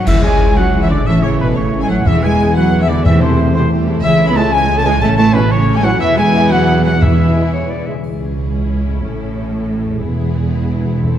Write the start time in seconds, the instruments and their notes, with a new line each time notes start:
Already playing: harp G#4
0.06 double bass section C#2, harp C#3, trombone section E3 C#4, cello section E3, viola section G#3 E4, violin section C#4 G#4 E5, french horn section E4, flute section E5, trumpet E5, concert bass drum, crash
0.15 harp G#3
0.23 viola section E3 C#4, cello section G#3, harp C#4, violin section E4 C#5 G#5, french horn section G#4, flute section G#5, trumpet G#5
0.40 viola section G#3 E4, violin section C#4 G#4
0.48 harp C#5
0.56 viola section E3 C#4, cello section F#3, violin section E4 C#5 F#5, french horn section F#4, flute section F#5, trumpet F#5, harp G#5
0.73 viola section G#3 E4, violin section C#4 G#4, harp G#5
0.81 cello section E3, french horn section E4, harp C#5, violin section E5, flute section E5, trumpet E5
0.89 cello section D3, viola section E3 C#4, french horn section D4, violin section E4 C#5 D5, trumpet D5, flute section D5
0.99 harp G#4
1.05 double bass section A1, harp A2, cello section E3, trombone section E3 C#4, viola section A3 C#4, violin section C#4 A4 E5, french horn section E4, flute section E5, trumpet E5
1.15 harp E3
1.21 cello section C#3, viola section E3 A3, french horn section C#4, harp C#4, violin section E4 C#5, flute section C#5, trumpet C#5
1.32 harp A4
1.38 cello section B2, viola section A3 C#4, french horn section B3, violin section C#4 A4 B4, flute section B4, trumpet B4, harp E5
1.48 harp C#5
1.55 cello section C#3, trombone section E3 C#4, viola section E3 A3, french horn section C#4, violin section E4 C#5, flute section C#5, trumpet C#5, harp A5
1.73 viola section A3 C#4, violin section C#4 A4, harp A5
1.80 cello section G#3, french horn section G#4, violin section G#5, flute section G#5, trumpet G#5
1.88 viola section E3 A3, cello section F#3, violin section E4 C#5 F#5, french horn section F#4, harp E5, flute section F#5, trumpet F#5
2.04 timpani E2, double bass section E2, harp E3, cello section E3, trombone section E3 B3, viola section G#3 B3, french horn section E4, violin section G#4 E5, flute section E5, trumpet E5
2.13 harp E4
2.22 viola section E3 G#3, cello section G#3, harp B3, violin section E4 B4 G#5, french horn section G#4, flute section G#5, trumpet G#5
2.39 viola section G#3 B3, violin section G#4
2.55 viola section E3 G#3, cello section F#3, violin section E4 B4 F#5, french horn section F#4, flute section F#5, trumpet F#5, harp G#5
2.65 harp E6
2.72 viola section G#3 B3, violin section G#4, harp G#5
2.80 cello section E3, french horn section E4, harp B4, violin section E5, flute section E5, trumpet E5
2.87 cello section D3, viola section E3 G#3, french horn section D4, violin section E4 B4 D5, flute section D5, trumpet D5
2.97 harp G#4
3.04 timpani E2, harp E3, trombone section E3 A3, cello section E3, viola section G3 A3, violin section C4 G4 E5, french horn section E4, flute section E5, trumpet E5
3.13 harp E4
3.20 cello section C3, viola section E3 G3, french horn section C4, violin section E4 A4 C5, flute section C5, trumpet C5
3.30 harp A4
3.38 viola section G3 A3, violin section C4 G4
3.46 harp C5
3.53 cello section C3, trombone section E3 A3, viola section E3 G3, french horn section C4, violin section E4 A4 C5, flute section C5, trumpet C5, harp A5
3.70 viola section G3 A3, violin section C4 G4, harp A5
3.79 harp C5
3.86 viola section E3 G3, violin section E4 A4, harp E5
3.95 harp A4
4.02 double bass section C#2, harp C#3, cello section E3, viola section G#3, violin section C#4 G#4 E5, french horn section E4, flute section E5, trumpet E5
4.11 harp G#3
4.18 viola section E3 C#4, harp C#4, violin section E4 C#5
4.27 cello section B3, harp G#4, french horn section B4, flute section B5, violin section B5, trumpet B5
4.35 trombone section E3 G#3, viola section G#3, cello section A3, violin section C#4 G#4 A5, french horn section A4, flute section A5, trumpet A5
4.44 harp C#5
4.52 viola section E3 C#4, cello section G#3, violin section E4 C#5 G#5, french horn section G#4, flute section G#5, trumpet G#5
4.61 harp E6
4.68 viola section G#3, violin section C#4 G#4
4.76 cello section A3, french horn section A4, harp C#5, flute section A5, violin section A5, trumpet A5
4.84 trombone section E3 G#3, viola section E3 C#4, cello section G#3, violin section E4 C#5 G#5, french horn section G#4, flute section G#5, trumpet G#5
4.94 harp G#4
5.00 double bass section A1, harp A2, viola section A3 C#4, cello section A3, violin section C#4 A4 A5, french horn section A4, flute section A5, trumpet A5
5.10 harp E3
5.17 viola section E3 A3, cello section A3, harp C#4, violin section E4 C#5 A5, french horn section A4, flute section A5, trumpet A5
5.33 cello section B2, trombone section E3 C#4, viola section A3 C#4, french horn section B3, violin section C#4 A4 B4, trumpet B4, flute section B4
5.42 harp C#5
5.51 cello section C#3, viola section E3 A3, french horn section C#4, violin section E4 C#5, flute section C#5, trumpet C#5, harp A5
5.67 viola section A3 C#4, violin section C#4 A4, harp A5
5.75 cello section G#3, french horn section G#4, harp C#5, flute section G#5, trumpet G#5, violin section G#5
5.83 viola section E3 A3, trombone section E3 C#4, cello section F#3, violin section E4 C#5 F#5, french horn section F#4, trumpet F#5, flute section F#5
5.93 harp A4
6.00 double bass section E2, harp E2, viola section E3 B3, cello section E3, violin section E4 B4 E5, french horn section E4, trumpet E5, flute section E5
6.09 harp B2
6.17 cello section G#3, harp B3, french horn section G#4, violin section G#5, trumpet G#5, flute section G#5
6.33 trombone section E3 B3, harp E5
6.49 cello section F#3, french horn section F#4, violin section F#5, trumpet F#5, flute section F#5
6.76 harp B4
6.84 trombone section E3 B3, cello section F#3, french horn section F#4, violin section F#5, trumpet F#5, flute section F#5
7.01 harp E2, timpani E2, cello section E3, viola section E3 B3, violin section E4 G#4 E5, french horn section E4, flute section E5, trumpet E5
7.11 harp B2
7.27 harp G#4
7.36 trombone section E3 G#3
7.53 clarinet C#5, harp G#5
7.61 harp E6
7.70 clarinet D5
7.78 harp B4
7.86 harp C#3 E5, trombone section E3 G#3, clarinet E5
7.90 harp C#4
7.95 harp G#4
7.99 harp E5
8.04 double bass section C#2, cello section C#2, viola section C#4, violin section E4 G#4, triangle
8.86 harp A2
8.90 harp C#4
8.95 harp A4
8.99 harp E5
9.03 double bass section A1, cello section A2, violin section A4
9.85 harp E2
9.89 harp B3
9.94 harp G#4
9.98 violin section E4, harp E5
10.02 double bass section E1, cello section E2, viola section B3, violin section G#4
10.85 harp E2
10.89 harp C4
10.94 harp A4
10.98 harp E5
11.03 timpani E2, viola section C4, violin section A4